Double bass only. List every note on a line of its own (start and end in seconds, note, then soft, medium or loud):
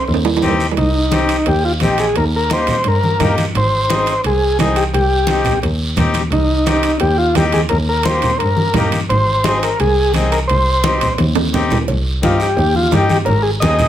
0.08 0.36 D#2 loud
0.44 0.71 D#2 medium
0.77 1.33 C2 loud
1.47 1.75 D#2 loud
1.81 2.09 A#1 medium
2.16 2.72 D#2 loud
2.85 3.13 G2 loud
3.20 3.48 G2 medium
3.55 4.11 G#1 loud
4.25 4.52 C2 medium
4.59 4.87 C2 medium
4.94 5.49 C2 loud
5.63 5.91 D#2 medium
5.98 6.25 D#2 medium
6.31 6.87 C2 loud
7.01 7.29 D#2 loud
7.35 7.64 D#2 medium
7.71 8.27 D#2 loud
8.41 8.69 G2 medium
8.76 9.04 G2 medium
9.10 9.66 G#1 loud
9.80 10.08 C2 loud
10.15 10.43 C2 medium
10.50 11.05 C2 loud
11.19 11.46 D#2 loud
11.53 11.81 D#2 medium
11.88 12.16 C2 loud
12.23 12.51 G2 medium
12.57 12.85 D#2 loud
12.92 13.20 G2 loud
13.27 13.55 G#1 loud
13.62 13.88 D#2 loud